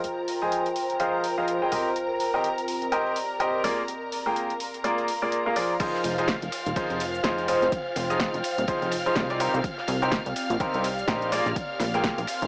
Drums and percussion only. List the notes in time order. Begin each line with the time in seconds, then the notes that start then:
0.04 closed hi-hat
0.28 open hi-hat
0.52 closed hi-hat
0.66 closed hi-hat
0.76 open hi-hat
0.90 closed hi-hat
1.00 closed hi-hat
1.24 open hi-hat
1.48 closed hi-hat
1.72 open hi-hat
1.96 closed hi-hat
2.20 open hi-hat
2.44 closed hi-hat
2.58 closed hi-hat
2.68 open hi-hat
2.82 closed hi-hat
2.92 closed hi-hat
3.16 open hi-hat
3.40 closed hi-hat
3.64 open hi-hat
3.88 closed hi-hat
4.12 open hi-hat
4.36 closed hi-hat
4.50 closed hi-hat
4.60 open hi-hat
4.74 closed hi-hat
4.84 closed hi-hat
4.98 closed hi-hat
5.08 open hi-hat
5.32 closed hi-hat
5.56 open hi-hat
5.80 kick, closed hi-hat, crash, ride, shaker
5.94 snare
6.04 open hi-hat, ride, shaker
6.18 closed hi-hat, ride, shaker
6.28 kick, snare, closed hi-hat, ride, shaker
6.42 closed hi-hat
6.52 open hi-hat, ride, shaker
6.66 closed hi-hat, shaker
6.76 kick, closed hi-hat, ride, shaker
6.90 closed hi-hat
7.00 open hi-hat, ride, shaker
7.15 shaker
7.24 kick, snare, closed hi-hat, ride, shaker
7.38 closed hi-hat
7.48 open hi-hat, ride, shaker
7.62 snare, closed hi-hat, shaker
7.72 kick, closed hi-hat, ride, shaker
7.96 open hi-hat, ride, shaker
8.09 snare, closed hi-hat, shaker
8.20 kick, snare, closed hi-hat, ride, shaker
8.34 closed hi-hat
8.44 open hi-hat, ride, shaker
8.58 closed hi-hat, shaker
8.68 kick, closed hi-hat, ride, shaker
8.82 closed hi-hat
8.91 open hi-hat, ride, shaker
9.06 ride, shaker
9.15 kick, snare, closed hi-hat, ride, shaker
9.30 closed hi-hat, ride
9.40 open hi-hat, ride, shaker
9.54 closed hi-hat, shaker
9.64 kick, closed hi-hat, ride, shaker
9.78 snare
9.88 open hi-hat, ride, shaker
10.02 closed hi-hat, ride, shaker
10.12 kick, snare, closed hi-hat, ride, shaker
10.26 closed hi-hat
10.36 open hi-hat, ride, shaker
10.50 closed hi-hat, shaker
10.60 kick, closed hi-hat, ride, shaker
10.74 closed hi-hat
10.84 open hi-hat, ride, shaker
10.99 shaker
11.08 kick, snare, closed hi-hat, ride, shaker
11.22 closed hi-hat
11.32 open hi-hat, ride, shaker
11.46 snare, closed hi-hat, shaker
11.56 kick, closed hi-hat, ride, shaker
11.80 snare, open hi-hat, ride, shaker
11.94 snare, closed hi-hat, shaker
12.04 kick, snare, closed hi-hat, ride, shaker
12.18 closed hi-hat
12.27 open hi-hat, ride, shaker
12.42 closed hi-hat, shaker